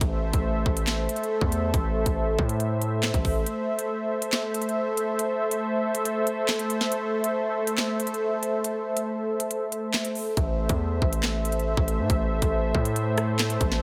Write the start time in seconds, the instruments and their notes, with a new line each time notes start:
0.01 808-style bass A1, analog synth pad A3 A4 C5 E5, kick, closed hi-hat
0.33 808-style bass A1, kick, closed hi-hat
0.66 808-style bass A1, kick
0.77 closed hi-hat
0.87 snare, clap, closed hi-hat
1.09 closed hi-hat
1.16 closed hi-hat
1.23 closed hi-hat
1.41 808-style bass E2, kick
1.52 closed hi-hat
1.74 808-style bass A1, kick, closed hi-hat
2.06 808-style bass A1, kick, closed hi-hat
2.39 808-style bass A2, kick
2.49 closed hi-hat
2.60 closed hi-hat
2.82 closed hi-hat
3.03 snare, clap, closed hi-hat
3.14 808-style bass A1, kick, closed hi-hat
3.25 kick, open hi-hat
3.46 analog synth pad A3 A4, closed hi-hat
3.79 closed hi-hat
4.22 closed hi-hat
4.32 snare, clap, closed hi-hat
4.54 closed hi-hat
4.62 closed hi-hat
4.69 closed hi-hat
4.97 closed hi-hat
5.19 closed hi-hat
5.51 closed hi-hat
5.95 closed hi-hat
6.05 closed hi-hat
6.27 closed hi-hat
6.48 snare, clap, closed hi-hat
6.59 closed hi-hat
6.70 closed hi-hat
6.81 snare
6.92 closed hi-hat
7.24 closed hi-hat
7.67 closed hi-hat
7.78 snare, clap, closed hi-hat
8.00 closed hi-hat
8.07 closed hi-hat
8.14 closed hi-hat
8.43 closed hi-hat
8.64 closed hi-hat
8.97 closed hi-hat
9.40 closed hi-hat
9.51 closed hi-hat
9.72 closed hi-hat
9.94 snare, clap, closed hi-hat
10.05 closed hi-hat
10.15 open hi-hat
10.37 808-style bass A1, analog synth pad A3 A4 C5 E5, kick, closed hi-hat
10.69 808-style bass E2, kick, closed hi-hat
11.02 808-style bass A1, kick
11.13 closed hi-hat
11.23 snare, clap, closed hi-hat
11.45 closed hi-hat
11.52 closed hi-hat
11.59 closed hi-hat
11.77 808-style bass A1, kick
11.88 closed hi-hat
11.99 808-style bass A2
12.10 808-style bass A1, kick, closed hi-hat
12.42 808-style bass A1, kick, closed hi-hat
12.75 808-style bass A2, kick
12.85 closed hi-hat
12.96 closed hi-hat
13.18 cross-stick, closed hi-hat
13.39 snare, clap, closed hi-hat
13.50 closed hi-hat
13.61 808-style bass A1, kick, closed hi-hat
13.72 snare